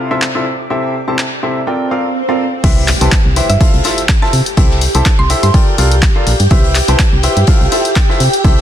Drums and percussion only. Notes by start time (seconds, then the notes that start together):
0.22 clap
1.18 clap
2.64 kick, closed hi-hat, crash
2.77 closed hi-hat
2.88 clap, closed hi-hat, open hi-hat
3.01 closed hi-hat
3.12 kick, snare, clap, closed hi-hat
3.36 closed hi-hat, open hi-hat
3.50 closed hi-hat
3.61 kick, closed hi-hat
3.74 closed hi-hat
3.84 snare, closed hi-hat, open hi-hat
3.98 closed hi-hat
4.09 kick, snare, clap, closed hi-hat
4.22 snare
4.33 closed hi-hat, open hi-hat
4.46 closed hi-hat
4.57 kick, closed hi-hat
4.70 snare
4.81 closed hi-hat, open hi-hat
4.95 closed hi-hat
5.06 kick, snare, clap, closed hi-hat
5.30 closed hi-hat, open hi-hat
5.43 closed hi-hat
5.54 kick, closed hi-hat
5.78 closed hi-hat, open hi-hat
5.92 closed hi-hat
6.02 kick, snare, clap, closed hi-hat
6.27 closed hi-hat, open hi-hat
6.39 closed hi-hat
6.51 kick, closed hi-hat
6.64 closed hi-hat
6.75 clap, closed hi-hat, open hi-hat
6.88 closed hi-hat
6.99 kick, snare, clap, closed hi-hat
7.23 closed hi-hat, open hi-hat
7.37 closed hi-hat
7.47 kick, closed hi-hat
7.61 closed hi-hat
7.72 closed hi-hat, open hi-hat
7.85 closed hi-hat
7.95 kick, snare, clap, closed hi-hat
8.09 snare
8.20 closed hi-hat, open hi-hat
8.33 closed hi-hat
8.44 kick, closed hi-hat
8.58 snare